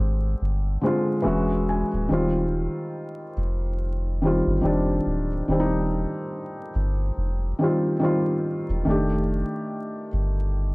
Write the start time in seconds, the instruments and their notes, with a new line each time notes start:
Already playing: felt piano D3 G#3 C4 G4
0.00 sub bass G#1
0.42 sub bass G1
0.81 felt piano D3 G#3 C4 C5
0.87 felt piano F4
1.22 sub bass E1, felt piano E3 G#3 C#4 E5
1.27 felt piano F#4
1.69 felt piano G#5
1.93 sub bass D1
2.09 sub bass D#1, felt piano D#3 G3 C4
2.14 felt piano F4
3.37 sub bass F1
4.22 felt piano D#3 G3 C4
4.27 felt piano F4
4.47 sub bass G1
4.61 sub bass F1, felt piano D#3 G3 C4
4.66 felt piano D4
5.06 sub bass D1
5.48 sub bass D#1, felt piano D#3 G3 C4
5.53 felt piano D4
5.60 felt piano D#4
6.75 sub bass G1
7.17 sub bass F1
7.59 felt piano D#3 G3 C4
7.64 felt piano F4
7.99 felt piano D#3 G3 C4
8.05 felt piano F4
8.69 sub bass E1
8.85 sub bass F1, felt piano D#3 A3 D4
8.90 felt piano G4
10.13 sub bass G1